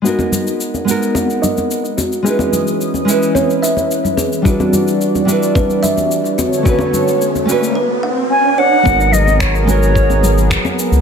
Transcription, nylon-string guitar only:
\new Staff \with { instrumentName = "Nylon-string guitar" } { \time 4/4 \key gis \minor \tempo 4 = 109 <gis b dis' fis' ais'>4. <gis b dis' fis' ais'>2~ <gis b dis' fis' ais'>8 | <gis cis' dis' e' b'>4. <gis cis' e' b'>2~ <gis cis' e' b'>8 | <g d' e' fis' b'>4. <g d' e' fis' b'>2 r8 | <a cis' d' fis' b'>4. <a cis' d' fis' b'>8 r2 |
<gis b dis' fis' ais'>4. <gis b dis' fis' ais'>2~ <gis b dis' fis' ais'>8 | }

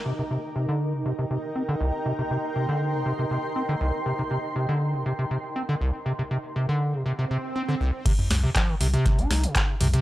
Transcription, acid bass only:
\new Staff \with { instrumentName = "Acid bass" } { \clef bass \time 4/4 \key c \minor \tempo 4 = 120 c16 c16 c16 r16 c16 d8 c16 c16 c16 c16 r16 c'16 d16 c,16 r16 | c16 c16 c16 r16 c16 d8 c16 c16 c16 c16 r16 c'16 d16 c,16 r16 | c16 c16 c16 r16 c16 d8 c16 c16 c16 c16 r16 c'16 d16 c,16 r16 | c16 c16 c16 r16 c16 d8 c16 c16 c16 c16 r16 c'16 d16 c,16 r16 |
c16 r8 c16 f16 ees16 c16 c8 ees'8 c16 d16 c16 c16 c16 | }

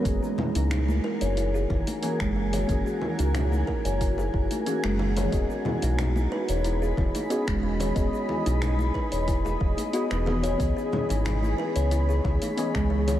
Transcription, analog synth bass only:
\new Staff \with { instrumentName = "Analog synth bass" } { \clef bass \time 4/4 \key fis \mixolydian \tempo 4 = 91 fis,,16 r8 cis,8. r16 fis,,8. fis,,16 r8 fis,,8. | fis,,16 r8 cis,8. r16 fis,,8. fis,,16 r8 fis,,8. | e,,16 r8 b,,8. r16 e,,8. e,,16 r8 e,,8. | e,,16 r8 b,,8. r16 e,,8. e,,16 r8 e,,8. |
cis,16 r8 gis,,8. r16 cis,8. cis,16 r8 cis,8. | }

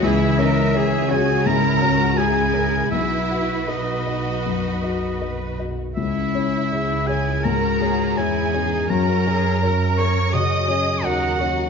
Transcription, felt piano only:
\new Staff \with { instrumentName = "Felt piano" } { \time 4/4 \key cis \dorian \tempo 4 = 83 cis,8 <cis' cis''>8 <gis' cis''>8 <cis' cis''>8 gis,8 <cis' cis''>8 <gis' cis''>8 <cis' cis''>8 | b,,8 <fis' fis''>8 <b' dis''>8 <fis' dis''>8 fis,8 <fis' dis''>8 <b' dis''>8 <fis' dis''>8 | cis,8 <cis' cis''>8 <gis' cis''>8 <cis' cis''>8 gis,8 <cis' cis''>8 <gis' cis''>8 <cis' cis''>8 | fis,8 <cis' cis''>8 <fis' cis''>8 <cis' cis''>8 cis8 <cis' cis''>8 <fis' cis''>8 <cis' cis''>8 | }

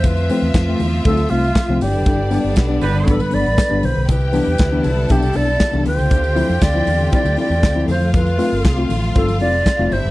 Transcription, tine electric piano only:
\new Staff \with { instrumentName = "Tine electric piano" } { \time 4/4 \key f \lydian \tempo 4 = 118 r8 <f a c'>16 r8 <f a c'>16 r8 <a c'>16 r16 <a c'>16 r8 <f a c'>16 r16 <g, d>16 | <g, d>16 r16 <g b d'>16 <b d'>16 r16 <g b d'>16 r16 <g, d>16 <b d'>16 <g, d>16 <b d'>16 r8 <g b d'>16 r16 <g, d>16 | c16 r16 <e b d'>16 <b d'>16 r16 <e b d'>16 r16 c16 <b d'>16 c16 <b d'>16 r8 <e b d'>16 r16 d16 | d16 r16 <f c' e'>16 <c' e'>16 r16 <f c' e'>16 r16 d16 <c' e'>16 d16 <c' e'>16 r8 <f c' e'>16 r16 f16 |
f16 r16 <a c' f'>16 <c' f'>16 r16 <a c' f'>16 r16 f16 <c' f'>16 f16 <c' f'>16 r8 <a c' f'>16 r16 <g, d>16 | }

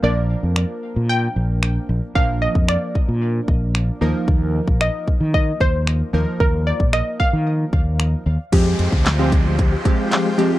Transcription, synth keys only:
\new Staff \with { instrumentName = "Synth keys" } { \time 4/4 \key f \dorian \tempo 4 = 113 <f bes d' bes'>1 | <f bes d' bes'>2.~ <f bes d' bes'>8 <f bes ees' bes'>8~ | <f bes ees' bes'>2.~ <f bes ees' bes'>8 <f bes ees' bes'>8~ | <f bes ees' bes'>2.~ <f bes ees' bes'>8 r8 |
<f aes c' g'>4 r16 <f aes c' g'>4 r16 <f aes c' g'>8. r16 <f aes c' g'>8 | }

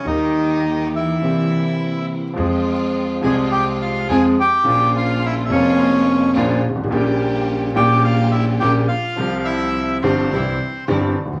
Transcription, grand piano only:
\new Staff \with { instrumentName = "Grand piano" } { \clef bass \time 4/4 \key c \phrygian \tempo 4 = 105 <ees, ees g bes g'>2 <c, c e bes c' g'>2 | \key f \minor <f, f aes c' aes'>4. <c, c f aes c' aes'>4. <f, f aes c' aes'>8 r8 | <bes,, bes, des f bes f'>4. <f,, f, des f bes f'>4. <bes,, bes, des f bes f'>8 r32 g,,32 aes,,32 a,,32 | <bes,, bes, des g bes g'>4. <bes,, bes, des g bes g'>4. <bes,, bes, des g bes g'>8 r8 |
<c, c f g c' g'>4. <g,, g, f g c' g'>8 <c, c e g c' g'>8 r8 <g,, g, e g c' g'>8 r32 d,32 ees,32 r32 | }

